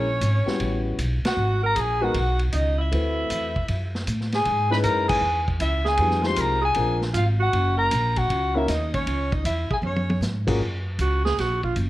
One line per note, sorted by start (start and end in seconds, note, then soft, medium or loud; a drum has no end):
0.00 0.20 A#1 medium
0.00 0.82 C#4 medium
0.00 0.82 C#5 medium
0.21 0.45 G#1 medium
0.21 kick soft
0.21 hi-hat pedal medium
0.21 ride medium
0.46 0.95 G3 medium
0.46 0.96 B3 medium
0.46 0.96 C#4 medium
0.46 0.96 E4 medium
0.46 0.96 F#4 medium
0.46 muted upright bass stroke soft
0.46 snare soft
0.60 0.97 A1 medium
0.60 kick soft
0.60 ride medium
0.98 1.22 B1 medium
0.98 kick soft
0.98 hi-hat pedal medium
0.98 ride medium
1.24 1.61 F#4 medium
1.24 1.62 F#5 loud
1.24 muted upright bass stroke soft
1.24 snare medium
1.24 ride medium
1.37 1.74 G#1 medium
1.63 1.77 A#4 medium
1.63 1.82 A#5 loud
1.75 2.13 A#1 medium
1.75 2.03 G#4 medium
1.75 kick soft
1.75 hi-hat pedal medium
1.75 ride medium
1.80 2.05 G#5 medium
2.01 2.13 G#3 medium
2.01 2.13 B3 medium
2.01 2.13 D#4 medium
2.01 2.40 F#4 medium
2.01 2.14 F#4 medium
2.01 2.14 A#4 medium
2.01 2.41 F#5 loud
2.14 2.52 B1 medium
2.14 kick soft
2.14 ride medium
2.39 ride soft
2.52 2.90 C#2 medium
2.52 2.76 D#4 medium
2.52 2.78 D#5 medium
2.52 kick soft
2.52 hi-hat pedal soft
2.52 ride medium
2.78 3.90 E4 medium
2.78 3.91 E5 medium
2.91 3.29 D2 medium
2.91 3.50 A3 medium
2.91 3.51 C4 medium
2.91 3.51 E4 medium
2.91 3.51 F#4 medium
2.91 3.51 B4 medium
2.91 kick soft
2.91 ride medium
3.30 3.67 E2 medium
3.30 kick soft
3.30 hi-hat pedal medium
3.30 ride medium
3.56 kick medium
3.68 4.06 F#2 medium
3.68 kick soft
3.68 ride medium
3.95 snare soft
4.07 4.44 A2 medium
4.07 kick soft
4.07 hi-hat pedal medium
4.07 ride medium
4.21 snare soft
4.32 4.69 G#4 medium
4.32 4.70 G#5 loud
4.32 snare soft
4.32 ride soft
4.45 4.83 G#2 medium
4.45 kick soft
4.45 ride medium
4.70 5.19 G#3 medium
4.70 5.20 C#4 medium
4.70 5.20 D#4 medium
4.70 5.20 E4 medium
4.70 4.77 B4 medium
4.70 5.20 B4 medium
4.70 4.78 B5 medium
4.70 snare soft
4.83 5.21 F#2 medium
4.83 5.07 A#4 medium
4.83 5.07 A#5 loud
4.83 kick soft
4.83 hi-hat pedal medium
4.83 ride medium
5.08 5.44 G#4 medium
5.08 5.45 G#5 loud
5.08 kick medium
5.08 crash medium
5.21 5.59 E2 medium
5.48 kick medium
5.60 5.98 C#2 medium
5.60 5.84 E4 medium
5.60 5.85 E5 loud
5.60 kick soft
5.60 hi-hat pedal soft
5.60 ride medium
5.85 6.24 G#4 loud
5.85 6.28 G#5 loud
5.85 snare soft
5.97 6.36 F2 medium
5.97 6.22 G3 medium
5.97 6.22 B3 medium
5.97 6.22 D4 medium
5.97 6.23 E4 medium
5.97 6.23 F#4 medium
5.97 kick soft
5.97 ride medium
6.10 snare soft
6.22 6.58 G#3 medium
6.22 6.58 C4 medium
6.22 6.58 D#4 medium
6.22 6.58 F4 medium
6.22 6.59 G4 medium
6.22 6.38 C5 medium
6.22 snare soft
6.27 6.42 C6 loud
6.36 6.75 C2 medium
6.36 6.61 A#4 medium
6.36 kick soft
6.36 hi-hat pedal medium
6.36 ride medium
6.40 6.65 A#5 loud
6.61 6.98 G#4 medium
6.61 7.00 G#5 loud
6.75 7.13 A#1 medium
6.75 6.99 A#3 medium
6.75 6.99 C4 medium
6.75 6.99 D4 medium
6.75 7.00 F4 medium
6.75 7.00 A#4 medium
6.75 kick soft
6.75 ride medium
7.01 snare soft
7.14 7.52 G#1 loud
7.14 7.25 F4 medium
7.14 7.28 F5 loud
7.14 kick soft
7.14 hi-hat pedal medium
7.14 ride medium
7.40 7.76 F#4 medium
7.40 7.77 F#5 loud
7.53 7.90 F#1 medium
7.53 kick soft
7.53 ride medium
7.77 8.18 A#4 medium
7.77 8.19 A#5 loud
7.91 8.29 A#1 medium
7.91 kick soft
7.91 hi-hat pedal medium
7.91 ride medium
8.16 8.57 F#4 medium
8.16 8.59 F#5 loud
8.16 kick medium
8.16 ride medium
8.30 8.67 C#2 medium
8.30 kick soft
8.30 ride medium
8.55 8.67 A#3 medium
8.55 8.67 C#4 medium
8.55 8.67 D#4 medium
8.55 8.68 E4 medium
8.55 8.67 F#4 medium
8.55 8.68 A#4 medium
8.55 8.68 E5 medium
8.68 9.05 D#2 medium
8.68 8.92 D#4 medium
8.68 8.92 D#5 medium
8.68 kick soft
8.68 snare soft
8.68 hi-hat pedal medium
8.68 ride medium
8.93 9.34 C#4 medium
8.93 9.35 C#5 medium
8.93 kick medium
8.93 ride medium
9.07 9.44 C#2 medium
9.07 kick soft
9.07 ride medium
9.32 9.45 D#4 medium
9.32 9.45 D#5 medium
9.32 kick medium
9.45 9.68 E2 medium
9.45 9.69 E4 medium
9.45 9.69 E5 medium
9.45 kick soft
9.45 hi-hat pedal medium
9.45 ride medium
9.71 9.76 G#4 medium
9.71 9.79 G#5 medium
9.71 muted upright bass stroke soft
9.71 kick medium
9.82 10.20 F#2 medium
9.82 10.19 C#4 medium
9.82 high tom soft
9.86 10.21 C#5 medium
9.96 high tom medium
10.10 high tom medium
10.21 10.58 G#2 medium
10.21 snare medium
10.21 hi-hat pedal medium
10.47 10.59 A#3 medium
10.47 10.59 C#4 medium
10.47 10.59 F4 medium
10.47 10.59 F#4 medium
10.47 10.59 G#4 medium
10.47 kick medium
10.47 crash medium
10.60 10.98 F#2 medium
10.60 kick soft
10.99 11.36 C#2 medium
10.99 11.24 F#4 medium
10.99 kick soft
10.99 hi-hat pedal medium
10.99 ride medium
11.25 11.41 G#4 loud
11.25 snare medium
11.38 11.75 A#1 medium
11.38 11.63 F#4 medium
11.38 kick soft
11.38 snare soft
11.38 ride medium
11.63 11.75 F4 medium
11.63 kick medium
11.76 11.89 F#1 medium
11.76 kick soft
11.76 hi-hat pedal soft
11.76 ride medium